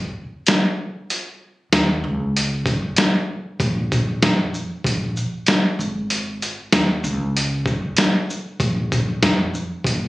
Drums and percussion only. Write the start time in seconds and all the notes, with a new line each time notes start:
0.47 snare, closed hi-hat
1.10 closed hi-hat
1.73 snare, closed hi-hat
2.37 closed hi-hat
2.66 kick, closed hi-hat
2.96 snare, closed hi-hat
3.60 kick, closed hi-hat
3.92 kick, closed hi-hat, shaker
4.23 snare, closed hi-hat
4.54 shaker
4.84 kick, closed hi-hat
5.17 shaker
5.46 snare, closed hi-hat
5.80 shaker
6.10 closed hi-hat
6.42 closed hi-hat, shaker
6.72 snare, closed hi-hat
7.04 shaker
7.37 closed hi-hat
7.66 kick, shaker
7.97 snare, closed hi-hat
8.30 shaker
8.60 kick, closed hi-hat
8.92 kick, closed hi-hat, shaker
9.23 snare, closed hi-hat
9.54 shaker
9.84 kick, closed hi-hat